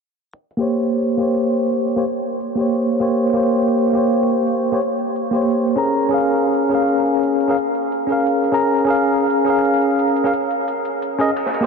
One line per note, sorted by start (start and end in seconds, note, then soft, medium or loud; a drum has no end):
0.33 closed hi-hat medium
0.51 closed hi-hat medium
0.57 1.16 A#3 medium
0.57 1.17 G4 medium
0.57 1.18 C5 medium
0.62 1.19 C#5 medium
0.68 closed hi-hat medium
0.85 closed hi-hat medium
1.03 closed hi-hat medium
1.17 1.94 A#3 medium
1.17 1.95 G4 medium
1.17 1.96 C5 medium
1.17 closed hi-hat medium
1.22 1.97 C#5 medium
1.37 closed hi-hat medium
1.54 closed hi-hat medium
1.63 closed hi-hat soft
1.72 closed hi-hat medium
1.89 closed hi-hat medium
1.96 2.03 A#3 medium
1.96 2.03 G4 medium
1.96 2.04 C5 medium
1.96 2.04 C#5 medium
1.96 closed hi-hat soft
2.06 closed hi-hat medium
2.23 closed hi-hat medium
2.41 closed hi-hat medium
2.56 2.98 A#3 medium
2.56 2.99 G4 medium
2.56 3.00 C5 medium
2.56 closed hi-hat medium
2.61 3.01 C#5 medium
2.75 closed hi-hat medium
2.92 closed hi-hat medium
3.00 3.32 A#3 medium
3.00 3.33 G4 medium
3.00 3.34 C5 medium
3.00 3.34 C#5 medium
3.00 closed hi-hat soft
3.09 closed hi-hat medium
3.27 closed hi-hat medium
3.33 3.92 A#3 medium
3.33 3.93 G4 medium
3.33 3.94 C5 medium
3.38 3.95 C#5 medium
3.44 closed hi-hat medium
3.61 closed hi-hat medium
3.78 closed hi-hat medium
3.93 4.70 A#3 medium
3.93 4.71 G4 medium
3.93 4.72 C5 medium
3.93 closed hi-hat medium
3.98 4.73 C#5 medium
4.13 closed hi-hat medium
4.30 closed hi-hat medium
4.39 closed hi-hat soft
4.47 closed hi-hat medium
4.64 closed hi-hat medium
4.72 4.78 A#3 medium
4.72 4.79 G4 medium
4.72 4.79 C5 medium
4.72 4.80 C#5 medium
4.72 closed hi-hat soft
4.82 closed hi-hat medium
4.99 closed hi-hat medium
5.16 closed hi-hat medium
5.31 5.74 A#3 medium
5.31 5.74 G4 medium
5.31 5.75 C5 medium
5.31 closed hi-hat medium
5.36 5.76 C#5 medium
5.50 closed hi-hat medium
5.68 closed hi-hat medium
5.76 6.08 C#4 medium
5.76 6.09 G#4 medium
5.76 6.10 A#4 medium
5.76 6.10 A#5 medium
5.76 closed hi-hat soft
5.85 closed hi-hat medium
6.02 closed hi-hat medium
6.09 6.68 C#4 medium
6.09 6.69 G#4 medium
6.09 6.70 A#4 medium
6.14 6.71 F5 medium
6.20 closed hi-hat medium
6.37 closed hi-hat medium
6.54 closed hi-hat medium
6.69 7.46 C#4 medium
6.69 7.47 G#4 medium
6.69 7.48 A#4 medium
6.69 closed hi-hat medium
6.74 7.49 F5 medium
6.89 closed hi-hat medium
7.06 closed hi-hat medium
7.15 closed hi-hat soft
7.23 closed hi-hat medium
7.40 closed hi-hat medium
7.48 7.54 C#4 medium
7.48 7.55 G#4 medium
7.48 7.55 A#4 medium
7.48 7.56 F5 medium
7.48 closed hi-hat soft
7.58 closed hi-hat medium
7.75 closed hi-hat medium
7.92 closed hi-hat medium
8.07 8.49 C#4 medium
8.07 8.50 G#4 medium
8.07 8.51 A#4 medium
8.07 closed hi-hat medium
8.12 8.52 F5 medium
8.27 closed hi-hat medium
8.44 closed hi-hat medium
8.52 8.84 C#4 medium
8.52 8.85 G#4 medium
8.52 8.86 A#4 medium
8.52 8.86 A#5 medium
8.52 closed hi-hat soft
8.61 closed hi-hat medium
8.78 closed hi-hat medium
8.85 9.43 C#4 medium
8.85 9.45 G#4 medium
8.85 9.46 A#4 medium
8.90 9.47 F5 medium
8.95 closed hi-hat medium
9.13 closed hi-hat medium
9.30 closed hi-hat medium
9.45 10.22 C#4 medium
9.45 10.23 G#4 medium
9.45 10.24 A#4 medium
9.45 closed hi-hat medium
9.50 10.24 F5 medium
9.65 closed hi-hat medium
9.82 closed hi-hat medium
9.91 closed hi-hat soft
9.99 closed hi-hat medium
10.08 closed hi-hat soft
10.16 closed hi-hat medium
10.24 10.30 C#4 medium
10.24 10.31 G#4 medium
10.24 10.31 A#4 medium
10.24 10.32 F5 medium
10.24 closed hi-hat soft
10.33 closed hi-hat medium
10.51 closed hi-hat medium
10.68 closed hi-hat medium
10.85 closed hi-hat medium
11.02 closed hi-hat medium
11.19 11.29 C#4 medium
11.19 11.29 G#4 medium
11.19 11.30 A#4 medium
11.19 11.30 D#5 loud
11.19 closed hi-hat medium
11.29 closed hi-hat soft
11.36 closed hi-hat medium
11.36 ride medium
11.46 snare soft
11.54 closed hi-hat medium
11.54 ride medium
11.61 11.66 A#3 medium
11.61 11.66 G4 medium